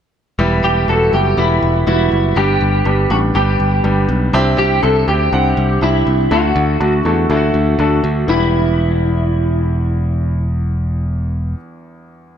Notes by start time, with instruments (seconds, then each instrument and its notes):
0.39 picked electric bass E1, grand piano E3 G3 B3 E4 G4
0.64 clean electric guitar G4
0.88 picked electric bass E1, grand piano G3 B3 E4 F#4, clean electric guitar A4
1.13 picked electric bass F#1, grand piano G3 B3 E4 A4, clean electric guitar G4
1.37 picked electric bass E1, grand piano G3 B3 E4 G4, clean electric guitar E4
1.62 picked electric bass E1
1.87 picked electric bass E1, grand piano G3 B3 E4 F#4, clean electric guitar E4
2.12 picked electric bass F#1
2.36 picked electric bass G1, grand piano G2 G3 B3 D4 G4, clean electric guitar G4
2.61 picked electric bass G1
2.85 picked electric bass G1, grand piano G3 B3 D4 G4
3.10 picked electric bass A1, grand piano G3 B3 D4 G4, clean electric guitar F#4
3.35 picked electric bass G1, grand piano G3 B3 D4 G4, clean electric guitar G4
3.60 picked electric bass G1
3.84 picked electric bass G1, grand piano G3 B3 D4 G4
4.09 picked electric bass B1
4.33 picked electric bass C2, grand piano C3 C4 D4 E4 G4
4.58 picked electric bass C2, clean electric guitar G4
4.83 picked electric bass C2, grand piano C4 D4 E4 G4, clean electric guitar A4
5.08 picked electric bass D2, grand piano C4 D4 E4 G4, clean electric guitar G4
5.33 picked electric bass C2, grand piano C4 D4 E4 F#5
5.57 picked electric bass C2
5.82 picked electric bass C2, grand piano C4 D4 E4 G4, clean electric guitar E4
6.07 picked electric bass C2
6.31 picked electric bass D2, grand piano D3 A3 D4 F#4 A4, clean electric guitar F#4
6.56 picked electric bass D2
6.80 picked electric bass D2, grand piano A3 D4 F#4 A4
7.05 picked electric bass E2, grand piano A3 D4 F#4 A4
7.30 picked electric bass D2, grand piano A3 D4 E4 A4
7.37 grand piano F#4
7.54 picked electric bass D2
7.79 picked electric bass D2, grand piano A3 D4 F#4 A4
8.04 picked electric bass D2
8.27 picked electric bass E1, grand piano E2 G3 B3 E4, clean electric guitar E4
8.31 grand piano G4